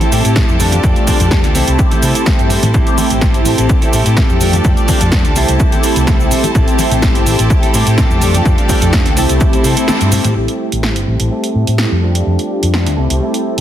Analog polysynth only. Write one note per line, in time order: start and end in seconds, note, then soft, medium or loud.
0.00 0.55 A3 medium
0.00 0.55 C4 medium
0.00 0.55 E4 medium
0.00 0.56 G4 loud
0.59 1.50 A3 medium
0.59 1.50 D4 medium
0.59 1.51 F4 medium
0.59 1.51 G4 medium
1.54 2.69 A3 medium
1.54 2.69 C4 medium
1.54 2.70 E4 medium
1.54 2.70 G4 loud
2.73 4.36 A3 medium
2.73 4.36 C4 medium
2.73 4.36 E4 medium
2.73 4.37 G4 loud
4.40 5.31 A3 medium
4.40 5.31 D4 medium
4.40 5.32 F4 medium
4.40 5.32 G4 medium
5.35 6.50 A3 medium
5.35 6.51 C4 medium
5.35 6.51 E4 medium
5.35 6.51 G4 loud
6.54 8.17 A3 medium
6.54 8.17 C4 medium
6.54 8.17 E4 medium
6.54 8.18 G4 loud
8.21 9.12 A3 medium
8.21 9.12 D4 medium
8.21 9.13 F4 medium
8.21 9.13 G4 medium
9.16 10.31 A3 medium
9.16 10.31 C4 medium
9.16 10.32 E4 medium
9.16 10.32 G4 loud
10.35 11.98 A3 medium
10.35 11.98 C4 medium
10.35 11.98 E4 medium
10.35 11.99 G4 loud
12.01 12.93 A3 medium
12.01 12.93 D4 medium
12.01 12.93 F4 medium
12.01 12.94 G4 medium
12.97 13.61 A3 medium
12.97 13.61 C4 medium
12.97 13.61 E4 medium
12.97 13.61 G4 loud